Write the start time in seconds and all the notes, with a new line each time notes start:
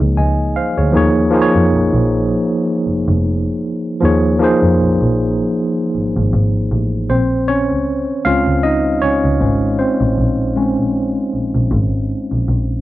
Already playing: F3 A#3 D#4 G#4 C#5
0.01 C#2
0.17 C#2 D#5 G#5
0.56 C5 F5
0.78 D2 G#4 C#5
0.92 D#2 F3 A#3 D#4 G#4
0.97 C#5
1.30 F3 A#3 D#4 G#4
1.35 C5
1.41 C#5
1.54 F2
1.72 A#1
1.93 A#1
2.87 F1
3.08 F1
4.00 D#2 F3 A#3 D#4 G#4
4.05 C#5
4.39 F3 A#3 D#4 G#4
4.44 C5
4.63 F2
4.79 A#1
5.01 A#1
5.95 G#1
6.17 G#1
6.33 G#1
6.72 A1
7.10 A#1 C4 C5
7.48 C#4 C#5
7.70 C#2
8.25 C#2 G#3 C4 C#4 F4 F5
8.47 C#2
8.63 D#4 D#5
9.02 C#2 C#4 C#5
9.24 C#2
9.41 G#1 G#3 C#4 C5
9.79 C4 C5
10.01 A1
10.18 A#1
10.56 G#3 C4 C#4
10.78 A#1
11.33 A#1
11.55 A#1
11.72 G#1
12.32 A#1
12.48 A#1